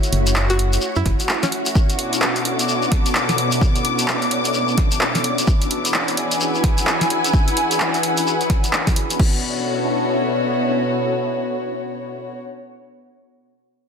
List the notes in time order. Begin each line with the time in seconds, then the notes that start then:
Already playing: A3 C#4 E4 F#4 C#5
0.03 closed hi-hat, shekere
0.13 F#1, closed hi-hat
0.27 closed hi-hat, shekere
0.36 clap, shekere
0.50 F#4, closed hi-hat, shekere
0.59 closed hi-hat
0.73 closed hi-hat, shekere
0.81 shekere
0.96 F#2 E4, shekere
1.06 F#1, kick, snare, closed hi-hat
1.20 closed hi-hat, shekere
1.29 clap, shekere
1.43 C#4, snare, closed hi-hat, shekere
1.52 closed hi-hat
1.66 closed hi-hat, shekere
1.75 B2 B3 D4 A4, kick, shekere
1.90 closed hi-hat, shekere
1.95 D6, closed hi-hat
2.13 closed hi-hat, shekere
2.22 clap, shekere
2.36 closed hi-hat, shekere
2.45 closed hi-hat
2.59 closed hi-hat, shekere
2.68 shekere
2.82 shekere
2.92 kick, snare, closed hi-hat
3.06 closed hi-hat, shekere
3.15 clap, shekere
3.29 snare, closed hi-hat, shekere
3.38 closed hi-hat
3.52 closed hi-hat, shekere
3.61 kick, shekere
3.76 closed hi-hat, shekere
3.85 closed hi-hat
3.99 closed hi-hat, shekere
4.08 clap, shekere
4.22 closed hi-hat, shekere
4.31 closed hi-hat
4.45 closed hi-hat, shekere
4.54 shekere
4.68 shekere
4.78 kick, snare, closed hi-hat
4.91 closed hi-hat, shekere
5.01 clap, shekere
5.15 snare, closed hi-hat, shekere
5.24 closed hi-hat
5.38 closed hi-hat, shekere
5.47 E3 E4 F#4 G#4, kick, shekere
5.61 B4, closed hi-hat, shekere
5.71 closed hi-hat
5.85 F#5, closed hi-hat, shekere
5.93 G#5, clap, shekere
6.08 closed hi-hat, shekere
6.17 closed hi-hat
6.31 closed hi-hat, shekere
6.41 shekere
6.55 shekere
6.64 kick, snare, closed hi-hat
6.78 closed hi-hat, shekere
6.87 clap, shekere
7.01 snare, closed hi-hat, shekere
7.10 closed hi-hat
7.24 closed hi-hat, shekere
7.33 kick, shekere
7.48 closed hi-hat, shekere
7.57 closed hi-hat
7.71 closed hi-hat, shekere
7.80 clap, shekere
7.94 closed hi-hat, shekere
8.03 closed hi-hat
8.17 closed hi-hat, shekere
8.27 shekere
8.41 closed hi-hat, shekere
8.50 kick, snare, closed hi-hat
8.64 closed hi-hat, shekere
8.73 clap, shekere
8.87 kick, snare, closed hi-hat, shekere
8.96 closed hi-hat
9.10 closed hi-hat, shekere
9.19 B2 B3 C#4 D4 E4 F#4 A4, kick, crash
9.28 F#4
9.35 C#5